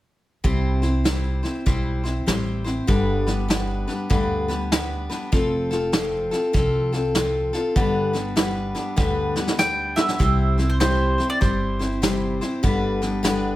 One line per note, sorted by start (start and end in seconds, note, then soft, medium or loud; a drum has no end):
0.44 1.40 C2 medium
0.44 0.82 C3 medium
0.44 0.83 G3 medium
0.44 0.83 C4 medium
0.44 0.82 E4 medium
0.44 0.81 C5 medium
0.44 kick medium
0.44 snare soft
0.82 1.04 C4 soft
0.82 1.05 E4 soft
0.82 1.05 C5 soft
0.82 snare soft
1.04 1.43 G3 medium
1.04 1.43 C4 medium
1.04 1.42 E4 medium
1.04 1.42 C5 medium
1.04 snare medium
1.04 hi-hat pedal medium
1.43 1.65 C4 soft
1.43 1.65 E4 soft
1.43 1.66 C5 soft
1.43 snare soft
1.66 2.18 B1 medium
1.66 2.04 G3 medium
1.66 2.04 C4 medium
1.66 2.04 E4 medium
1.66 2.02 C5 medium
1.66 kick medium
1.66 snare soft
2.04 2.26 C4 soft
2.04 2.26 E4 soft
2.04 2.27 C5 soft
2.04 snare soft
2.26 2.79 A1 medium
2.26 2.65 G3 medium
2.26 2.65 C4 medium
2.26 2.64 E4 medium
2.26 2.63 C5 medium
2.26 snare medium
2.26 hi-hat pedal medium
2.64 2.88 C4 soft
2.64 2.88 E4 soft
2.64 2.87 C5 soft
2.64 snare soft
2.87 3.84 G1 medium
2.87 3.26 G2 medium
2.87 3.26 D3 medium
2.87 3.26 G3 medium
2.87 3.27 B3 medium
2.87 3.26 D4 medium
2.87 3.25 B4 medium
2.87 kick medium
2.87 snare soft
3.27 3.47 G3 soft
3.27 3.48 B3 soft
3.27 3.49 D4 soft
3.27 3.49 B4 soft
3.27 snare soft
3.48 3.87 G3 medium
3.48 3.87 B3 medium
3.48 3.87 D4 medium
3.48 3.86 B4 medium
3.48 snare medium
3.48 hi-hat pedal medium
3.88 4.08 G3 soft
3.88 4.09 B3 soft
3.88 4.10 D4 soft
3.88 4.10 B4 soft
3.88 snare soft
4.10 5.06 D2 medium
4.10 4.48 G2 medium
4.10 4.48 D3 medium
4.10 4.48 G3 medium
4.10 4.48 B3 medium
4.10 4.48 D4 medium
4.10 4.47 B4 medium
4.10 kick loud
4.10 snare soft
4.48 4.71 G3 soft
4.48 4.71 B3 soft
4.48 4.71 D4 soft
4.48 4.71 B4 soft
4.48 snare soft
4.72 5.10 G3 soft
4.72 5.09 B3 medium
4.72 5.09 D4 medium
4.72 5.08 B4 medium
4.72 snare loud
4.72 hi-hat pedal medium
5.10 5.31 G3 soft
5.10 5.32 B3 soft
5.10 5.32 D4 soft
5.10 5.32 B4 soft
5.10 snare soft
5.32 6.28 F1 medium
5.32 5.70 F3 medium
5.32 5.70 C4 medium
5.32 5.70 F4 medium
5.32 5.69 A4 medium
5.32 kick medium
5.32 snare soft
5.71 5.92 C4 soft
5.71 5.93 F4 soft
5.71 5.93 A4 medium
5.71 snare soft
5.92 6.31 F3 medium
5.92 6.32 C4 medium
5.92 6.31 F4 medium
5.92 6.30 A4 medium
5.92 snare loud
5.92 hi-hat pedal medium
6.31 6.52 C4 soft
6.31 6.53 F4 soft
6.31 6.53 A4 medium
6.31 snare soft
6.53 7.50 C2 medium
6.53 6.92 F3 medium
6.53 6.92 C4 medium
6.53 6.92 F4 medium
6.53 6.91 A4 medium
6.53 kick medium
6.53 snare soft
6.92 7.14 C4 soft
6.92 7.15 F4 soft
6.92 7.15 A4 medium
6.92 snare soft
7.14 7.53 F3 soft
7.14 7.53 C4 medium
7.14 7.53 F4 medium
7.14 7.52 A4 medium
7.14 snare medium
7.14 hi-hat pedal medium
7.53 7.76 C4 soft
7.53 7.76 F4 soft
7.53 7.76 A4 medium
7.53 snare soft
7.76 8.72 G1 medium
7.76 8.14 G2 medium
7.76 8.14 D3 medium
7.76 8.14 G3 medium
7.76 8.13 B3 medium
7.76 8.13 D4 medium
7.76 8.12 B4 medium
7.76 kick medium
7.76 snare soft
8.13 8.34 G3 soft
8.13 8.35 B3 soft
8.13 8.36 D4 soft
8.13 8.36 B4 medium
8.13 snare soft
8.36 8.74 G3 medium
8.36 8.75 B3 medium
8.36 8.74 D4 medium
8.36 8.73 B4 medium
8.36 snare medium
8.36 hi-hat pedal medium
8.75 8.96 G3 soft
8.75 8.96 B3 soft
8.75 8.96 D4 medium
8.75 8.97 B4 medium
8.75 snare soft
8.96 9.94 D2 medium
8.96 9.35 G2 medium
8.96 9.36 D3 medium
8.96 9.36 G3 medium
8.96 9.36 B3 medium
8.96 9.35 D4 medium
8.96 9.34 B4 medium
8.96 kick loud
8.96 snare soft
9.36 9.57 G3 soft
9.36 9.58 B3 soft
9.36 9.59 D4 soft
9.36 9.58 B4 medium
9.36 snare medium
9.47 snare soft
9.58 9.97 G3 medium
9.58 9.97 B3 soft
9.58 9.97 D4 medium
9.58 9.96 B4 medium
9.58 9.98 G5 medium
9.58 snare medium
9.58 hi-hat pedal medium
9.96 10.18 G3 soft
9.96 10.20 B3 soft
9.96 10.20 D4 soft
9.96 10.19 B4 soft
9.96 10.65 E5 medium
9.96 snare medium
10.08 snare medium
10.19 11.16 C2 medium
10.19 10.58 C3 medium
10.19 10.58 G3 medium
10.19 10.58 C4 medium
10.19 10.58 E4 medium
10.19 10.57 C5 medium
10.19 kick medium
10.19 snare soft
10.58 10.80 C4 soft
10.58 10.80 E4 soft
10.58 10.80 C5 medium
10.58 snare soft
10.70 10.79 C5 medium
10.80 11.19 C3 medium
10.80 11.19 G3 medium
10.80 11.19 C4 medium
10.80 11.18 E4 medium
10.80 11.26 C5 medium
10.80 11.17 C5 medium
10.80 snare loud
10.80 hi-hat pedal medium
11.18 11.40 C4 soft
11.18 11.41 E4 soft
11.18 11.41 C5 soft
11.18 snare soft
11.30 11.40 D5 medium
11.41 12.38 G1 medium
11.41 11.79 G3 medium
11.41 11.80 C4 medium
11.41 11.79 E4 medium
11.41 12.36 C5 medium
11.41 11.78 C5 medium
11.41 kick medium
11.41 snare soft
11.79 12.01 C4 soft
11.79 12.01 E4 soft
11.79 12.02 C5 soft
11.79 snare soft
12.02 12.40 C3 medium
12.02 12.41 G3 medium
12.02 12.41 C4 medium
12.02 12.41 E4 medium
12.02 12.40 C5 medium
12.02 snare medium
12.02 hi-hat pedal medium
12.41 12.63 C4 soft
12.41 12.64 E4 soft
12.41 12.63 C5 medium
12.41 snare soft
12.63 13.56 G1 medium
12.63 13.01 G2 medium
12.63 13.01 D3 medium
12.63 13.02 G3 medium
12.63 13.02 B3 medium
12.63 13.01 D4 medium
12.63 13.00 B4 medium
12.63 kick medium
12.63 snare soft
13.02 13.23 G3 soft
13.02 13.23 B3 soft
13.02 13.23 D4 medium
13.02 13.23 B4 medium
13.02 snare soft
13.23 13.56 G2 medium
13.23 13.56 D3 medium
13.23 13.56 G3 medium
13.23 13.56 B3 medium
13.23 13.56 D4 medium
13.23 13.56 B4 medium
13.23 snare loud
13.23 hi-hat pedal medium